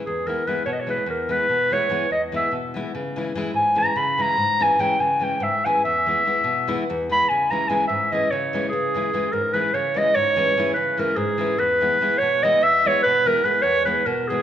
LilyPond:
<<
  \new Staff \with { instrumentName = "Clarinet" } { \time 7/8 \key cis \minor \tempo 4 = 146 gis'8 ais'8 b'8 cis''32 dis''32 cis''16 b'8 ais'8 b'8~ | b'8 cis''4 dis''8 e''8 r4 | r4. gis''8 ais''8 b''8 ais''8~ | ais''8 gis''8 g''8 gis''8 g''8 e''8 gis''8 |
e''2~ e''8 r8 b''8 | gis''8 ais''8 gis''8 e''8 dis''8 cis''4 | gis'4. ais'8 b'8 cis''8 dis''8 | cis''4. b'8 ais'8 gis'4 |
b'4. cis''8 dis''8 e''8 cis''8 | b'8 ais'8 b'8 cis''8 b'8 ais'8 gis'8 | }
  \new Staff \with { instrumentName = "Nylon-string guitar" } { \clef bass \time 7/8 \key cis \minor << { r8 <e gis b e'>8 <e gis b e'>8 r8 <e gis b e'>8 r8 <e gis b e'>8 | r8 <e gis b e'>8 <e gis b e'>8 r8 <e gis b e'>8 r8 <e gis b e'>8 | r8 <e gis cis' e'>8 <e gis cis' e'>8 r8 <e gis cis' e'>8 r8 <e gis cis' e'>8 | r8 <e gis cis' e'>8 <e gis cis' e'>8 r8 <e gis cis' e'>8 r8 <e gis cis' e'>8 |
r8 <e gis b e'>8 <e gis b e'>8 r8 <e gis b e'>8 r8 <e gis b e'>8 | r8 <e gis cis' e'>8 <e gis cis' e'>8 r8 <e gis cis' e'>8 r8 <e gis cis' e'>8 | r8 <e gis cis' e'>8 <e gis cis' e'>8 r8 <e gis cis' e'>8 r8 <e gis cis' e'>8 | r8 <e gis cis' e'>8 <e gis cis' e'>8 r8 <e gis cis' e'>8 r8 <e gis cis' e'>8 |
r8 <e gis b e'>8 <e gis b e'>8 r8 <e gis b e'>8 r8 <e gis b e'>8 | r8 <e gis b e'>8 <e gis b e'>8 r8 <e gis b e'>8 r8 <e gis b e'>8 | } \\ { e,4 r8 b,4 e,4 | b,4 r8 e,4 b,4 | cis4 r8 gis,4 cis4 | gis,4 r8 cis4 gis,4 |
e,4 r8 b,4 e,4 | cis4 r8 gis,4 cis4 | cis4 r8 gis,4 cis4 | gis,4 r8 cis4 gis,4 |
e,4 r8 b,4 e,4 | b,4 r8 e,4 b,4 | } >> }
>>